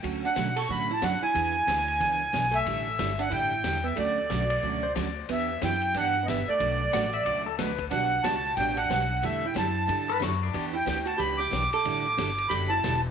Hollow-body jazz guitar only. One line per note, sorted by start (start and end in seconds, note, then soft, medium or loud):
0.25 0.55 D4 medium
0.56 0.68 A4 medium
0.70 0.88 F#4 medium
0.91 1.02 E4 medium
1.03 1.21 D4 medium
1.23 2.49 E4 medium
2.51 3.14 A3 medium
3.19 3.30 D4 medium
3.30 3.80 E4 medium
3.84 3.96 B3 medium
3.96 4.91 A3 medium
5.30 5.60 B3 medium
5.63 5.93 E4 medium
5.97 6.23 D4 medium
6.23 6.26 B3 medium
6.29 6.47 B3 medium
6.49 7.43 A3 medium
7.91 8.21 D4 medium
8.24 8.54 F#4 medium
8.60 8.76 D4 medium
8.77 9.19 D4 medium
9.24 9.44 A3 medium
9.46 9.55 E4 medium
9.56 10.17 E4 medium
10.73 11.04 E4 medium
11.06 11.18 F#4 medium
11.18 11.37 G4 medium
11.40 11.70 G4 loud
11.74 12.47 A4 medium
12.50 12.69 G4 medium
12.70 13.01 E4 medium